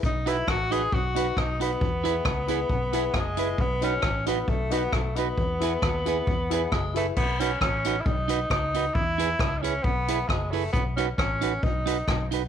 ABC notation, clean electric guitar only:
X:1
M:4/4
L:1/16
Q:1/4=134
K:Bmix
V:1 name="Clean electric guitar"
z2 [DFB] z3 [DFB] z3 [DFB] z3 [DFB] z | z2 [EGB] z3 [EGB] z3 [EGB] z3 [EGB] z | z2 [DFB] z3 [DFB] z3 [DFB] z3 [DFB] z | z2 [EGB] z3 [EGB] z3 [EGB] z3 [EGB] z |
z2 [DFB] z3 [DFB] z3 [DFB] z3 [DFB] z | z2 [EGB] z3 [EGB] z3 [EGB] z3 [EGB] z | z2 [DFB] z3 [DFB] z3 [DFB] z3 [DFB] z |]